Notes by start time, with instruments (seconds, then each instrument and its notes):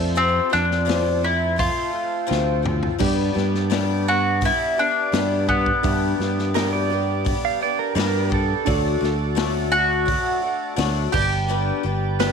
Already playing: fingered electric bass F2, twelve-string acoustic guitar F3 A3 C4 F4, grand piano C4 A4 C5, mandolin D4, accordion A4 C5 A5 C6
0.15 twelve-string acoustic guitar F2 C3 F3 A3 C4 F4, mandolin C4
0.50 fingered electric bass F2, twelve-string acoustic guitar F3 A3 C4 F4, mandolin D4, snare
0.71 snare
0.85 twelve-string acoustic guitar F2 C3 F3 A3 C4 F4, open hi-hat
0.90 snare
1.21 twelve-string acoustic guitar F3 A3 C4, mandolin E4
1.56 twelve-string acoustic guitar F3 A3 C4 F4, mandolin F4, kick, open hi-hat
1.91 twelve-string acoustic guitar F3 A3 C4 F4
2.27 twelve-string acoustic guitar F2 C3 F3 A3 C4 F4
2.31 fingered electric bass D2, snare
2.62 twelve-string acoustic guitar F3 A3 C4 F4, mid tom
2.83 floor tom
2.98 twelve-string acoustic guitar G2 D3 G3 B3 D4 G4, fingered electric bass G2, grand piano G3 D4 B4 D5, accordion B3 D5 D6, kick, crash
3.34 fingered electric bass G2, twelve-string acoustic guitar G3 B3 D4 G4, snare
3.55 snare
3.70 twelve-string acoustic guitar G2 D3 G3 B3 D4 G4, snare, open hi-hat
4.08 twelve-string acoustic guitar G3 B3 D4, mandolin F#4
4.41 twelve-string acoustic guitar G3 B3 D4 G4, kick, open hi-hat
4.45 mandolin E4
4.77 twelve-string acoustic guitar G3 B3 D4 G4, mandolin D4
5.12 twelve-string acoustic guitar G2 D3 G3 B3 D4 G4, fingered electric bass G2, snare, open hi-hat
5.47 mandolin B3, twelve-string acoustic guitar B3 D4 G4, kick
5.51 twelve-string acoustic guitar G3
5.66 kick
5.83 twelve-string acoustic guitar G2 D3 G3 B3 D4 G4, fingered electric bass G2, grand piano B3 D4 G4 E5, kick, open hi-hat
6.19 fingered electric bass G2, twelve-string acoustic guitar G3 B3 D4 G4, snare
6.39 snare
6.54 twelve-string acoustic guitar G2 D3 G3 B3 D4 G4, pedal steel guitar A#4, snare, open hi-hat
6.73 pedal steel guitar D5
6.90 twelve-string acoustic guitar G3 B3 D4 G4
7.25 twelve-string acoustic guitar G3 B3 D4 G4, kick, open hi-hat
7.45 pedal steel guitar F5
7.61 twelve-string acoustic guitar G3 B3 D4 G4, pedal steel guitar D5
7.79 pedal steel guitar A#4
7.95 twelve-string acoustic guitar G2 D3 G3 B3 D4 G4, fingered electric bass G2, pedal steel guitar A#4, snare, open hi-hat
8.30 twelve-string acoustic guitar G3 B3 D4 G4, kick
8.34 pedal steel guitar A4
8.65 fingered electric bass D2, twelve-string acoustic guitar D3 F#3 A3 D4 F#4, grand piano D4 F#4 A4 D5, accordion A4 F#5, kick, open hi-hat
9.01 fingered electric bass D2, twelve-string acoustic guitar A3 D4 F#4, snare
9.35 twelve-string acoustic guitar D3 F#3 A3 D4 F#4, snare, open hi-hat
9.72 twelve-string acoustic guitar A3 D4 F#4, mandolin F#4
10.05 twelve-string acoustic guitar F#3 A3 D4 F#4, kick, open hi-hat
10.42 twelve-string acoustic guitar A3 D4 F#4
10.76 fingered electric bass D2, twelve-string acoustic guitar D3 F#3 A3 D4 F#4, snare, open hi-hat
11.12 fingered electric bass G1, twelve-string acoustic guitar G3 B3 D4 G4, grand piano D4 G4 B4 D5, mandolin G4, accordion B4 G5, kick, crash
11.48 twelve-string acoustic guitar G2 D3 G3 B3 D4 G4
11.83 fingered electric bass G1, twelve-string acoustic guitar G3 B3 D4 G4
12.19 twelve-string acoustic guitar G2 D3 G3 B3 D4 G4, pedal steel guitar B4, snare, open hi-hat